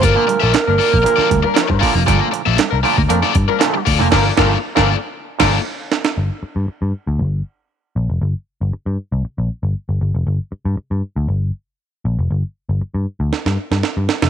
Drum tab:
CC |----------------|----------------|x---------x-----|----------------|
HH |x-x-x-o-x-x-x-o-|x-x-x-o-x-x-x-o-|----------------|----------------|
SD |----o----o--o--o|----o----o--o--o|o-o--o----o---oo|----------------|
BD |o------o--o--oo-|o------o--o---o-|o-o--o----o-----|----------------|

CC |----------------|----------------|----------------|
HH |----------------|----------------|----------------|
SD |----------------|----------------|--------oo-oo-oo|
BD |----------------|----------------|----------------|